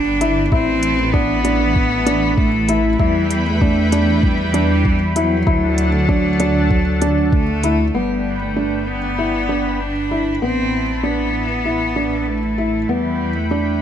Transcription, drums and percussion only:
0.21 closed hi-hat
0.52 kick
0.83 closed hi-hat
1.14 kick
1.45 closed hi-hat
1.76 kick
2.07 closed hi-hat
2.38 kick
2.69 closed hi-hat
2.99 kick
3.31 closed hi-hat
3.61 kick
3.92 closed hi-hat
4.23 kick
4.54 closed hi-hat
4.85 kick
5.16 closed hi-hat
5.47 kick
5.78 closed hi-hat
6.09 kick
6.40 closed hi-hat
6.71 kick
7.02 closed hi-hat
7.32 kick
7.64 closed hi-hat

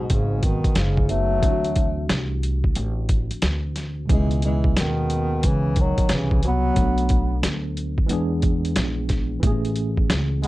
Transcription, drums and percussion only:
0.10 kick, closed hi-hat
0.43 kick, closed hi-hat
0.64 kick, closed hi-hat
0.75 snare, closed hi-hat
0.97 kick
1.09 closed hi-hat
1.43 kick, closed hi-hat
1.65 closed hi-hat
1.76 kick, closed hi-hat
2.09 snare, closed hi-hat
2.43 closed hi-hat
2.64 kick
2.75 closed hi-hat
3.09 kick, closed hi-hat
3.31 closed hi-hat
3.42 snare, closed hi-hat
3.76 snare, closed hi-hat
4.09 kick, closed hi-hat
4.31 closed hi-hat
4.42 closed hi-hat
4.64 kick
4.77 snare, closed hi-hat
5.10 closed hi-hat
5.43 kick, closed hi-hat
5.76 kick, closed hi-hat
5.98 kick, closed hi-hat
6.09 snare, closed hi-hat
6.31 kick
6.43 closed hi-hat
6.76 kick, closed hi-hat
6.98 closed hi-hat
7.09 kick, closed hi-hat
7.43 snare, closed hi-hat
7.77 closed hi-hat
7.98 kick
8.09 closed hi-hat
8.42 kick, closed hi-hat
8.65 closed hi-hat
8.76 snare, closed hi-hat
9.09 kick, snare, closed hi-hat
9.43 kick, closed hi-hat
9.65 closed hi-hat
9.76 closed hi-hat
9.97 kick
10.10 snare, closed hi-hat
10.44 closed hi-hat

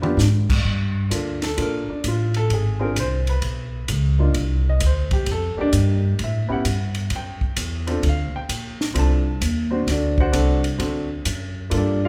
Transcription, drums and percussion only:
0.03 mid tom
0.19 snare, hi-hat pedal
0.50 kick, crash
0.65 kick
1.11 kick, hi-hat pedal, ride
1.42 snare, ride
1.58 kick, ride
2.04 kick, hi-hat pedal, ride
2.34 ride
2.50 kick, ride
2.96 kick, hi-hat pedal, ride
3.27 ride
3.42 kick, ride
3.88 kick, hi-hat pedal, ride
4.34 kick, ride
4.80 kick, hi-hat pedal, ride
5.11 kick, ride
5.26 kick, ride
5.73 kick, hi-hat pedal, ride
6.19 kick, ride
6.65 kick, hi-hat pedal, ride
6.95 ride
7.10 kick, ride
7.41 kick
7.57 kick, hi-hat pedal, ride
7.87 ride
8.03 kick, ride
8.49 kick, hi-hat pedal, ride
8.81 snare
8.95 kick, ride
9.41 kick, hi-hat pedal, ride
9.87 kick, snare, ride
10.18 kick
10.33 kick, hi-hat pedal, ride
10.64 ride
10.80 kick, ride
11.25 kick, hi-hat pedal, ride
11.71 kick, ride

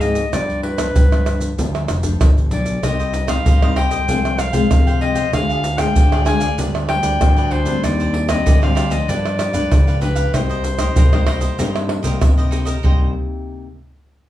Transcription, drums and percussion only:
0.01 pandeiro, maracas, surdo
0.15 pandeiro, maracas, surdo
0.33 pandeiro, tamborim, maracas, surdo
0.49 pandeiro, maracas, surdo
0.63 pandeiro
0.78 pandeiro, tamborim, maracas, surdo
0.96 pandeiro, maracas, surdo
1.12 pandeiro, tamborim, maracas
1.26 pandeiro, tamborim, maracas
1.41 pandeiro, maracas
1.59 pandeiro, maracas, surdo
1.75 pandeiro, tamborim, maracas
1.88 pandeiro, tamborim, maracas
2.03 pandeiro, maracas, surdo
2.21 pandeiro, tamborim, maracas, surdo
2.38 pandeiro, maracas
2.51 pandeiro, maracas, surdo
2.66 pandeiro, maracas, surdo
2.83 pandeiro, tamborim, maracas, surdo
3.00 pandeiro, maracas, surdo
3.14 pandeiro, maracas
3.28 pandeiro, tamborim, maracas, surdo
3.46 pandeiro, maracas, surdo
3.62 pandeiro, tamborim, maracas
3.76 pandeiro, tamborim
3.91 pandeiro, maracas
4.09 pandeiro, maracas, surdo
4.25 pandeiro, tamborim, maracas
4.39 pandeiro, tamborim, maracas
4.53 pandeiro, maracas, surdo
4.71 pandeiro, tamborim, maracas, surdo
4.88 pandeiro, maracas
5.01 pandeiro, surdo
5.16 pandeiro, maracas, surdo
5.33 pandeiro, tamborim, maracas, surdo
5.50 pandeiro, maracas, surdo
5.64 pandeiro, maracas
5.78 pandeiro, tamborim, maracas, surdo
5.96 pandeiro, maracas, surdo
6.12 pandeiro, tamborim, maracas
6.26 pandeiro, tamborim, maracas
6.41 pandeiro, maracas
6.58 pandeiro, maracas, surdo
6.75 pandeiro, tamborim, maracas
6.89 pandeiro, tamborim
7.03 pandeiro, maracas, surdo
7.21 pandeiro, tamborim, maracas, surdo
7.37 pandeiro, maracas
7.51 pandeiro, surdo
7.66 pandeiro, maracas, surdo
7.84 pandeiro, tamborim, maracas, surdo
8.00 pandeiro, maracas, surdo
8.14 pandeiro
8.29 pandeiro, tamborim, maracas, surdo
8.47 pandeiro, maracas, surdo
8.63 pandeiro, tamborim, maracas
8.77 pandeiro, tamborim, maracas
8.91 pandeiro, maracas
9.09 pandeiro, maracas, surdo
9.26 pandeiro, tamborim, maracas
9.39 pandeiro, tamborim, maracas
9.54 pandeiro, maracas, surdo
9.72 pandeiro, tamborim, maracas, surdo
9.88 pandeiro, maracas
10.02 pandeiro, maracas, surdo
10.16 pandeiro, maracas, surdo
10.34 pandeiro, tamborim, maracas, surdo
10.50 pandeiro, maracas, surdo
10.64 pandeiro, maracas
10.79 pandeiro, tamborim, maracas, surdo
10.96 pandeiro, maracas, surdo
11.13 pandeiro, tamborim, maracas
11.27 pandeiro, tamborim
11.41 pandeiro, maracas
11.59 pandeiro, maracas, surdo
11.76 pandeiro, tamborim, maracas
11.89 pandeiro, tamborim
12.04 pandeiro, maracas, surdo
12.21 pandeiro, tamborim, maracas, surdo
12.38 pandeiro, maracas
12.52 pandeiro, maracas
12.66 pandeiro, maracas, surdo
12.84 surdo

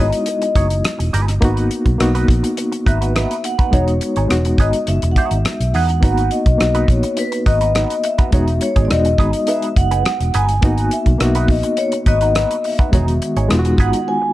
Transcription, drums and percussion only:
0.12 closed hi-hat
0.26 closed hi-hat
0.42 closed hi-hat
0.56 kick, closed hi-hat
0.70 closed hi-hat
0.85 cross-stick, closed hi-hat
1.00 closed hi-hat
1.14 closed hi-hat
1.28 cross-stick, closed hi-hat
1.42 kick, closed hi-hat
1.57 closed hi-hat
1.71 closed hi-hat
1.86 kick, closed hi-hat
2.00 cross-stick, closed hi-hat
2.15 closed hi-hat
2.28 kick, closed hi-hat
2.44 closed hi-hat
2.57 closed hi-hat
2.72 closed hi-hat
2.86 kick, closed hi-hat
3.02 closed hi-hat
3.16 cross-stick, closed hi-hat
3.31 closed hi-hat
3.44 closed hi-hat
3.59 kick, closed hi-hat
3.73 kick, closed hi-hat
3.88 closed hi-hat
4.01 closed hi-hat
4.16 closed hi-hat
4.30 cross-stick, closed hi-hat
4.45 closed hi-hat
4.58 kick, closed hi-hat
4.73 closed hi-hat
4.87 closed hi-hat
5.02 closed hi-hat
5.16 kick, closed hi-hat
5.31 closed hi-hat
5.45 cross-stick, closed hi-hat
5.61 closed hi-hat
5.74 open hi-hat
5.89 closed hi-hat
6.03 kick, closed hi-hat
6.18 closed hi-hat
6.31 closed hi-hat
6.46 kick, closed hi-hat
6.60 cross-stick, closed hi-hat
6.75 closed hi-hat
6.88 kick, closed hi-hat
7.03 closed hi-hat
7.17 closed hi-hat
7.32 closed hi-hat
7.46 kick, closed hi-hat
7.61 closed hi-hat
7.75 cross-stick, closed hi-hat
7.90 closed hi-hat
8.04 closed hi-hat
8.18 kick, cross-stick, closed hi-hat
8.32 kick, closed hi-hat
8.48 closed hi-hat
8.61 closed hi-hat
8.76 kick, closed hi-hat
8.91 cross-stick, closed hi-hat
9.05 closed hi-hat
9.18 kick, cross-stick, closed hi-hat
9.33 closed hi-hat
9.47 closed hi-hat
9.62 closed hi-hat
9.76 kick, closed hi-hat
9.91 closed hi-hat
10.05 cross-stick, closed hi-hat
10.21 closed hi-hat
10.34 closed hi-hat
10.49 closed hi-hat
10.62 kick, closed hi-hat
10.78 closed hi-hat
10.91 closed hi-hat
11.06 kick, closed hi-hat
11.20 cross-stick, closed hi-hat
11.35 closed hi-hat
11.48 kick, open hi-hat
11.63 closed hi-hat
11.77 closed hi-hat
11.92 closed hi-hat
12.06 kick, closed hi-hat
12.21 closed hi-hat
12.35 cross-stick, closed hi-hat
12.51 closed hi-hat
12.64 open hi-hat
12.79 kick, closed hi-hat
12.93 kick, closed hi-hat
13.08 closed hi-hat
13.22 closed hi-hat
13.37 closed hi-hat
13.50 cross-stick, closed hi-hat
13.65 closed hi-hat
13.78 kick, closed hi-hat
13.93 closed hi-hat

